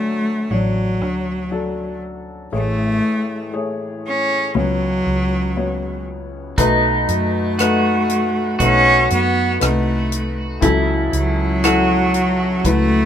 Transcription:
0.00 2.49 D2 soft
0.00 2.49 D3 soft
0.00 0.51 F#3 medium
0.00 0.52 A3 medium
0.00 2.54 C#4 soft
0.00 0.45 D4 soft
0.00 0.51 C#5 medium
0.50 1.02 A1 medium
0.50 2.02 F#3 medium
0.50 1.46 F#3 soft
0.50 1.46 D4 soft
0.50 1.46 C#5 medium
1.02 2.49 D2 medium
1.51 2.46 F#3 soft
1.51 2.46 D4 soft
1.51 2.47 A4 medium
2.52 4.51 A1 medium
2.52 3.00 A1 medium
2.52 4.51 A2 soft
2.52 3.48 A3 medium
2.52 3.51 A3 medium
2.52 3.48 G#4 soft
2.52 3.48 C#5 medium
3.53 4.49 A3 medium
3.53 4.49 G#4 soft
3.53 4.49 C#5 medium
4.07 4.53 C#4 medium
4.54 6.53 C#2 soft
4.54 5.02 C#2 medium
4.54 6.54 C#3 soft
4.54 6.04 F#3 medium
4.54 5.50 B3 medium
4.54 5.50 F#4 soft
4.54 5.50 C#5 medium
5.06 6.54 C#2 medium
5.57 6.52 B3 soft
5.57 6.52 F#4 soft
5.57 6.52 C#5 medium
6.58 7.05 B1 medium
6.58 10.59 B2 medium
6.58 7.53 A3 medium
6.58 7.62 D#4 medium
6.58 7.53 D#4 medium
6.58 7.53 B4 medium
6.58 kick medium
6.58 closed hi-hat medium
7.09 8.56 F#2 medium
7.09 8.58 A3 medium
7.09 closed hi-hat soft
7.59 8.55 A3 medium
7.59 8.55 D#4 medium
7.59 8.56 F#4 medium
7.59 8.55 B4 medium
7.59 cross-stick medium
7.59 closed hi-hat medium
8.10 closed hi-hat soft
8.59 9.07 B1 medium
8.59 9.55 A3 medium
8.59 9.09 C#4 medium
8.59 9.55 D#4 medium
8.59 10.68 F#4 medium
8.59 9.55 B4 medium
8.59 kick medium
8.59 closed hi-hat medium
9.10 9.58 F#2 medium
9.10 9.59 B3 medium
9.10 closed hi-hat soft
9.60 10.59 C2 medium
9.60 10.56 A3 medium
9.60 10.56 D#4 medium
9.60 10.56 B4 medium
9.60 cross-stick medium
9.60 closed hi-hat medium
9.64 10.35 A3 medium
10.12 closed hi-hat soft
10.61 13.05 C#2 medium
10.61 11.09 C#2 medium
10.61 13.05 C#3 medium
10.61 11.57 F#3 medium
10.61 11.57 E4 medium
10.61 11.67 E4 medium
10.61 11.57 A4 medium
10.61 kick medium
10.61 closed hi-hat medium
11.13 12.61 C#2 medium
11.13 closed hi-hat soft
11.18 12.69 F#3 medium
11.64 12.59 F#3 medium
11.64 12.59 E4 medium
11.64 13.05 F#4 medium
11.64 12.59 A4 medium
11.64 cross-stick medium
11.64 closed hi-hat medium
12.14 closed hi-hat soft
12.65 13.05 C#2 medium
12.65 13.05 F#3 medium
12.65 13.05 A3 loud
12.65 13.05 E4 soft
12.65 13.05 B4 medium
12.65 kick medium
12.65 closed hi-hat medium

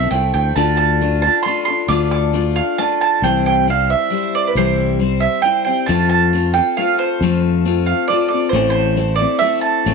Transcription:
0.00 0.10 A3 soft
0.00 0.12 C4 soft
0.00 0.12 E4 soft
0.00 0.11 A4 soft
0.00 0.10 E5 medium
0.11 0.31 C2 medium
0.11 0.57 A3 medium
0.11 0.56 C4 medium
0.11 0.57 E4 medium
0.11 0.33 G5 loud
0.15 0.58 A4 medium
0.34 0.54 D2 medium
0.34 0.54 G5 medium
0.56 1.27 D2 loud
0.56 1.00 D3 medium
0.56 1.00 A3 medium
0.56 1.01 D4 medium
0.56 1.01 F4 medium
0.56 1.01 A4 loud
0.56 0.76 A5 loud
0.77 1.21 A5 loud
1.01 1.23 A3 medium
1.01 1.23 D4 medium
1.01 1.23 F4 medium
1.01 1.22 A4 medium
1.22 1.46 F4 soft
1.22 1.45 A4 soft
1.22 1.42 A5 loud
1.26 1.46 D4 soft
1.43 1.67 A3 medium
1.43 1.64 C6 loud
1.47 1.68 D4 medium
1.47 1.68 F4 medium
1.47 1.67 A4 medium
1.65 1.89 F4 soft
1.65 1.89 A4 soft
1.65 1.88 C6 loud
1.70 1.89 D4 soft
1.88 2.60 D2 loud
1.88 2.33 D3 medium
1.88 2.32 A3 medium
1.88 2.33 D4 medium
1.88 2.34 F4 medium
1.88 2.34 A4 medium
1.88 2.10 D6 loud
2.11 2.57 D6 loud
2.33 2.77 A3 medium
2.33 2.78 D4 medium
2.33 2.78 F4 medium
2.33 2.79 A4 medium
2.56 2.76 F5 loud
2.78 3.22 A3 medium
2.78 3.23 D4 medium
2.78 3.23 F4 medium
2.78 3.24 A4 medium
2.78 2.99 A5 loud
3.01 3.23 A5 loud
3.22 3.93 C2 loud
3.22 3.67 C3 medium
3.22 3.67 E3 medium
3.22 3.66 G3 medium
3.22 3.68 C4 loud
3.22 3.68 E4 loud
3.22 3.70 C5 loud
3.22 3.45 G5 loud
3.46 3.66 G5 medium
3.67 4.09 G3 medium
3.67 4.11 C4 medium
3.67 4.12 E4 medium
3.67 4.13 C5 medium
3.67 3.89 F5 loud
3.90 4.35 E5 medium
4.10 4.55 G3 medium
4.10 4.57 C4 medium
4.10 4.56 E4 medium
4.10 4.58 C5 medium
4.35 4.49 D5 medium
4.47 4.55 B4 medium
4.55 5.26 C2 loud
4.55 5.00 C3 medium
4.55 5.00 E3 loud
4.55 4.98 G3 medium
4.55 5.00 C4 medium
4.55 5.00 E4 loud
4.55 5.41 C5 medium
4.55 5.01 C5 loud
4.99 5.41 G3 medium
4.99 5.43 C4 medium
4.99 5.44 E4 medium
4.99 5.45 C5 medium
5.20 5.41 E5 medium
5.42 5.65 G3 medium
5.42 5.66 C4 medium
5.42 5.67 E4 medium
5.42 5.65 C5 medium
5.42 5.63 G5 loud
5.65 5.88 C4 medium
5.65 5.89 E4 medium
5.65 5.88 C5 medium
5.65 5.88 G5 loud
5.69 5.88 G3 soft
5.86 6.60 F2 loud
5.86 6.32 F3 medium
5.86 6.33 A3 medium
5.86 6.34 C4 loud
5.86 6.33 F4 loud
5.86 6.36 A4 loud
5.86 6.08 A5 loud
6.09 6.53 A5 loud
6.33 6.55 A3 medium
6.33 6.55 C4 medium
6.33 6.55 F4 medium
6.33 6.53 A4 medium
6.54 6.78 C4 soft
6.54 6.78 F4 soft
6.54 6.77 A4 medium
6.54 6.74 G5 loud
6.77 7.23 A3 medium
6.77 7.23 C4 medium
6.77 7.22 F4 medium
6.77 7.24 A4 medium
6.77 6.98 F5 loud
6.99 7.40 C5 medium
7.21 7.92 F2 loud
7.21 7.66 F3 medium
7.21 7.65 A3 medium
7.21 7.65 C4 medium
7.21 7.66 F4 medium
7.25 7.67 A4 loud
7.65 8.09 A3 medium
7.65 8.11 C4 medium
7.65 8.10 F4 medium
7.65 8.12 A4 medium
7.86 8.07 F5 medium
8.08 8.32 A3 medium
8.08 8.32 C4 medium
8.08 8.27 D5 loud
8.12 8.31 F4 medium
8.12 8.29 A4 medium
8.28 8.54 F4 soft
8.28 8.53 A4 medium
8.28 8.49 D5 medium
8.34 8.53 C4 soft
8.49 9.24 A1 loud
8.49 8.98 A2 loud
8.49 8.69 C5 medium
8.54 8.98 E3 medium
8.54 8.96 A3 medium
8.54 8.96 C4 loud
8.54 8.97 E4 loud
8.54 8.99 A4 loud
8.70 9.14 C5 loud
8.97 9.19 A3 medium
8.97 9.20 C4 medium
8.97 9.19 E4 medium
8.97 9.18 A4 medium
9.16 9.42 A4 medium
9.16 9.41 D5 loud
9.21 9.40 A3 soft
9.21 9.41 C4 soft
9.21 9.42 E4 medium
9.39 9.87 A3 medium
9.39 9.86 C4 medium
9.39 9.61 E5 loud
9.43 9.87 E4 medium
9.43 9.88 A4 medium
9.61 9.94 A5 loud
9.86 9.94 A1 loud
9.86 9.94 A2 medium
9.86 9.94 E3 medium
9.86 9.94 A3 loud
9.86 9.94 C4 loud
9.86 9.94 E4 loud
9.86 9.94 A4 loud

